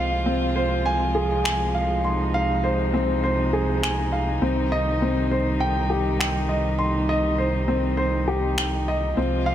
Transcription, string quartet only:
0.00 9.13 C3 medium
0.00 4.38 F3 medium
0.00 4.38 G#3 medium
0.00 2.01 F4 medium
2.04 9.13 D#4 medium
4.41 9.13 D#3 medium
4.41 9.13 G3 medium
9.17 9.55 C3 medium
9.17 9.55 F3 medium
9.17 9.55 G#3 medium
9.17 9.55 F4 medium

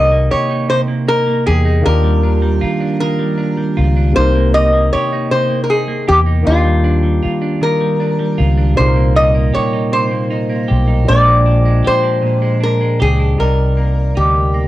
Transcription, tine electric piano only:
0.00 1.79 C3 medium
0.00 1.80 A#3 medium
0.00 1.82 D#4 medium
0.00 1.83 A#4 medium
1.82 4.10 D#3 medium
1.82 4.11 A#3 medium
1.82 4.12 D4 medium
1.88 4.13 F4 medium
1.88 4.14 G4 medium
4.12 6.41 C3 medium
4.12 6.41 A#3 medium
4.18 6.43 D#4 medium
4.18 6.44 A#4 medium
6.43 8.71 D#3 medium
6.43 8.72 A#3 medium
6.43 8.73 D4 medium
6.48 8.74 F4 medium
6.48 8.75 G4 medium
8.74 11.02 A#2 medium
8.74 11.03 G3 medium
8.74 11.04 A#3 medium
8.79 11.05 D#4 medium
8.79 8.85 G#4 medium
8.88 11.09 A#4 medium
11.04 13.33 A#2 medium
11.04 13.33 F3 medium
11.04 13.34 G#3 medium
11.09 13.35 D4 medium
11.09 11.16 B4 medium
11.09 13.36 G5 medium
11.19 13.40 C5 medium
13.35 14.68 C3 medium
13.35 14.68 G3 soft
13.35 14.68 D#4 soft
13.40 14.68 A#4 soft
13.40 14.68 D5 medium

